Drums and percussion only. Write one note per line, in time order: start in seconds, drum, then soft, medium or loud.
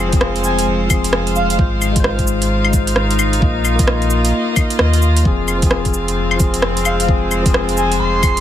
0.13 kick loud
0.13 closed hi-hat medium
0.21 cross-stick loud
0.36 closed hi-hat soft
0.44 cabasa medium
0.59 closed hi-hat medium
0.90 kick loud
0.90 closed hi-hat soft
0.90 cabasa medium
0.90 claves medium
1.04 closed hi-hat medium
1.13 cross-stick loud
1.27 closed hi-hat soft
1.36 cabasa medium
1.50 closed hi-hat medium
1.59 kick loud
1.82 cabasa medium
1.82 claves soft
1.96 kick loud
1.96 closed hi-hat medium
2.04 cross-stick medium
2.19 kick medium
2.19 closed hi-hat soft
2.27 cabasa medium
2.42 closed hi-hat medium
2.64 claves medium
2.73 kick medium
2.73 closed hi-hat soft
2.73 cabasa medium
2.87 closed hi-hat medium
2.96 cross-stick medium
3.11 closed hi-hat soft
3.19 cabasa medium
3.19 claves medium
3.33 closed hi-hat medium
3.42 kick loud
3.65 cabasa medium
3.65 claves soft
3.79 kick loud
3.79 closed hi-hat medium
3.87 cross-stick loud
4.02 closed hi-hat soft
4.10 cabasa medium
4.25 closed hi-hat medium
4.56 kick loud
4.56 closed hi-hat soft
4.56 cabasa medium
4.56 claves medium
4.70 closed hi-hat medium
4.79 cross-stick loud
4.93 closed hi-hat soft
5.02 cabasa medium
5.17 closed hi-hat medium
5.25 kick loud
5.48 cabasa medium
5.48 claves soft
5.62 kick loud
5.62 closed hi-hat medium
5.71 cross-stick loud
5.85 kick medium
5.85 closed hi-hat soft
5.94 cabasa medium
6.08 closed hi-hat medium
6.31 claves medium
6.39 kick loud
6.39 closed hi-hat soft
6.39 cabasa medium
6.54 closed hi-hat medium
6.62 cross-stick loud
6.77 closed hi-hat soft
6.85 cabasa medium
6.85 claves medium
7.00 closed hi-hat medium
7.09 kick loud
7.31 cabasa medium
7.31 claves soft
7.46 kick loud
7.46 closed hi-hat medium
7.54 cross-stick loud
7.69 closed hi-hat soft
7.77 cabasa medium
7.92 closed hi-hat medium
8.23 kick loud
8.23 closed hi-hat soft
8.23 cabasa medium
8.23 claves medium
8.37 closed hi-hat medium